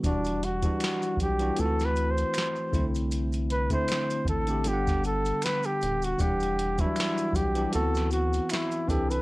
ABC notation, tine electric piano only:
X:1
M:4/4
L:1/16
Q:"Swing 16ths" 1/4=78
K:Em
V:1 name="Tine electric piano"
[E,G,DF]2 z [E,G,DF]3 z [E,G,DF] [E,A,C=F^F]4- [E,A,C=F^F] z [D,A,CE]2- | [D,A,CE]2 z [D,A,CE]3 z [D,A,CG] [D,G,B,=F^f]6 z2 | [E,G,Df]2 z [E,F,G,DF]3 z [E,G,DG] [E,B,CF]4- [E,B,CF] z [E,CDA]2 |]